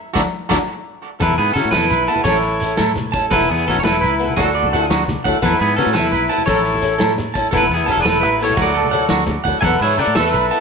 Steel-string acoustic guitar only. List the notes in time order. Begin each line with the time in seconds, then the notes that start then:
0.16 D4 E4 F#4
0.51 D4 E4 F#4
1.20 B3 A4, muted steel-string acoustic guitar stroke
1.55 B3 E4 A4
2.08 B3 E4 A4
2.26 C#4 E4 A4
2.62 C#4 E4 A4
3.14 C#4 E4 A4
3.32 B3 E4 A4
3.67 B3 E4
4.20 B3 A4
4.37 F#3 A3 E4 A4
4.73 F#3 A3 E4 A4
5.25 F#3 A3 E4 A4
5.42 B3 E4 A4
5.78 B3 E4 A4
6.29 B3 E4 A4
6.47 C#4 E4 A4
6.82 C#4 E4 A4
7.36 C#4 E4 A4
7.53 B3 E4 A4
7.85 B3 E4
7.90 muted steel-string acoustic guitar stroke
8.40 B3 E4
8.44 A4
8.59 F#3 A3 E4, muted steel-string acoustic guitar stroke
8.91 F#3 E4 A4, muted steel-string acoustic guitar stroke
9.46 F#3 A3 E4 A4
9.63 B3 E4 A4
9.98 B3 E4 A4
10.51 B3 E4 A4